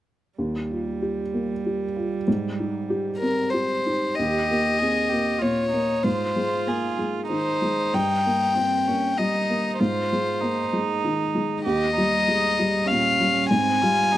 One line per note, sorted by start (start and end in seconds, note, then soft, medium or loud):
0.38 2.23 D#2 soft
0.38 3.93 G3 soft
0.71 1.21 F4 soft
1.02 1.52 G4 soft
1.34 1.84 A#3 soft
1.66 2.15 G4 soft
1.96 2.27 F4 soft
2.28 4.14 G#2 soft
2.60 3.08 D#4 soft
2.90 3.40 G4 soft
3.18 3.52 A#4 medium
3.22 3.72 C4 soft
3.50 4.06 G4 soft
3.50 4.16 C5 medium
3.86 4.18 D#4 soft
4.15 4.80 G4 soft
4.15 5.43 D#5 medium
4.19 6.02 D#2 soft
4.51 5.00 A#3 soft
4.78 5.12 C4 soft
4.78 5.11 G#4 soft
5.09 5.62 A#3 soft
5.09 5.40 G4 soft
5.39 5.92 A#2 soft
5.39 5.70 F4 soft
5.39 6.05 C#5 medium
5.70 6.05 A#3 soft
5.70 6.05 D#4 soft
6.03 7.89 G#2 soft
6.03 7.28 F4 soft
6.03 6.69 C5 medium
6.36 6.86 G#3 soft
6.67 6.98 A#3 soft
6.67 6.99 G#4 soft
6.98 7.49 G#3 soft
7.29 7.81 D#3 soft
7.29 8.56 D#4 soft
7.29 7.95 C5 soft
7.62 7.94 G#3 soft
7.94 9.75 G2 soft
7.94 9.20 G5 medium
8.26 8.75 A#3 soft
8.55 8.89 C4 soft
8.55 8.87 C4 soft
8.87 9.36 A#3 soft
8.87 9.18 C#4 soft
9.18 9.67 G3 soft
9.18 9.82 D#4 soft
9.18 9.78 D#5 medium
9.49 9.79 A#3 soft
9.79 11.61 G#2 soft
9.79 10.42 F4 soft
9.79 10.69 C5 medium
10.12 10.60 G#3 soft
10.41 10.72 A#3 soft
10.41 11.64 D#4 soft
10.73 11.22 G#3 soft
11.04 11.53 D#3 soft
11.35 11.65 G#3 soft
11.64 13.48 D#2 soft
11.64 11.95 G4 soft
11.64 12.89 D#5 medium
11.95 12.46 G3 soft
11.95 12.87 D#4 soft
12.28 12.58 G#3 soft
12.59 13.08 G3 soft
12.86 13.50 C#4 soft
12.86 13.50 F5 medium
12.91 13.39 A#2 soft
13.21 13.51 G3 soft
13.49 14.18 G#2 soft
13.49 13.83 C4 soft
13.49 14.18 G#5 medium
13.82 14.18 G3 soft
13.82 14.13 F4 medium
14.12 14.18 D#4 soft